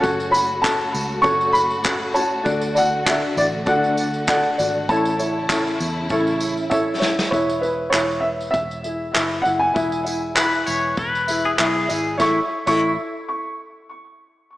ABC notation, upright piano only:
X:1
M:4/4
L:1/16
Q:"Swing 16ths" 1/4=99
K:A
V:1 name="Upright piano"
z2 b2 a4 c'2 b4 a2 | z2 f2 e2 d2 f4 f4 | a12 e4 | c2 B2 c2 e2 e6 f g- |
g12 z4 | c' z2 c'2 z8 z3 |]